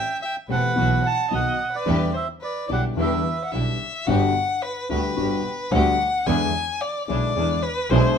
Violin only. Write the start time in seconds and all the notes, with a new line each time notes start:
Already playing: E5
0.22 E5
0.49 B4
1.04 F#5
1.31 D#5
1.73 B4
2.14 C5
2.41 B4
2.69 D5
2.96 B4
3.44 F#5
3.52 E5
4.07 F#5
4.62 B4
4.90 B4
5.72 F#5
6.27 G#5
6.81 D5
7.08 D5
7.63 B4
7.90 C5